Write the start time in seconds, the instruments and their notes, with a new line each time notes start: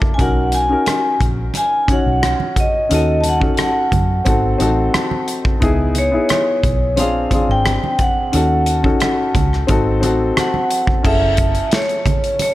Already playing: grand piano A#3 D4 E4 A4
0.02 kick
0.14 grand piano C#4, vibraphone G#5
0.18 fingered electric bass B1, grand piano D#4 F#4 A#4, vibraphone F#5, kick, closed hi-hat
0.52 vibraphone G#5, closed hi-hat, muted conga
0.69 grand piano C#4 D#4 F#4 A#4
0.86 cross-stick, closed hi-hat, high conga
1.20 fingered electric bass A#1, kick, closed hi-hat
1.54 vibraphone G#5, closed hi-hat, muted conga
1.87 grand piano C#4 D#4 F#4 C#5, muted fingered electric bass stroke, kick, closed hi-hat, muted conga
1.92 vibraphone F#5
2.06 fingered electric bass B1
2.23 cross-stick, closed hi-hat, high conga
2.40 high conga
2.56 vibraphone D#5, kick, closed hi-hat
2.89 fingered electric bass D#2, grand piano C#4 D#4 F#4 A4, closed hi-hat
2.94 vibraphone D#5
3.21 vibraphone A5, closed hi-hat, muted conga
3.29 vibraphone F#5
3.40 grand piano C#4 D#4 F#4 A4, kick
3.55 vibraphone A5, closed hi-hat
3.59 cross-stick, high conga
3.63 vibraphone F#5
3.92 fingered electric bass F#2, kick, closed hi-hat, low conga
4.25 fingered electric bass G#1, grand piano C4 D#4 F#4 A4, kick, closed hi-hat, muted conga
4.58 fingered electric bass A1, grand piano C4 D#4 F#4 A4, closed hi-hat, muted conga
4.94 cross-stick, closed hi-hat, high conga
5.11 high conga
5.28 closed hi-hat
5.45 kick
5.60 fingered electric bass C#2, grand piano B3 D#4 E4 G#4, kick, closed hi-hat
5.95 vibraphone C#5, closed hi-hat, muted conga
6.11 grand piano B3 D#4 E4 G#4
6.29 cross-stick, closed hi-hat, high conga
6.64 fingered electric bass B1, kick, closed hi-hat
6.96 fingered electric bass A#1, grand piano C4 D4 F4 G#4, vibraphone F5, closed hi-hat, muted conga
7.30 grand piano C4 D4 F4 G#4, muted fingered electric bass stroke, kick, closed hi-hat, muted conga
7.49 fingered electric bass G#1, vibraphone G5
7.66 cross-stick, closed hi-hat, high conga
7.84 high conga
7.99 vibraphone F#5, kick, closed hi-hat
8.32 fingered electric bass D#2, grand piano C#4 D#4 F#4 A4, closed hi-hat
8.66 closed hi-hat
8.83 grand piano C#4 D#4 F#4 A4, kick
9.00 cross-stick, closed hi-hat, high conga
9.35 fingered electric bass C#2, kick, closed hi-hat, low conga
9.53 cross-stick
9.67 fingered electric bass G#1, grand piano C4 D#4 F#4 A4, kick, closed hi-hat, muted conga
10.01 fingered electric bass A1, grand piano C4 D#4 F#4 A4, closed hi-hat, muted conga
10.37 vibraphone F#5, cross-stick, closed hi-hat, high conga
10.54 high conga
10.71 closed hi-hat
10.87 kick, high conga
11.03 fingered electric bass F#1, grand piano C#4 E4 G#4 A4, vibraphone E5, kick, crash
11.37 kick, closed hi-hat, muted conga
11.55 closed hi-hat
11.71 vibraphone C#5, snare, closed hi-hat, high conga
11.89 closed hi-hat
12.06 kick, closed hi-hat, low conga
12.24 closed hi-hat
12.39 vibraphone C#5, closed hi-hat, muted conga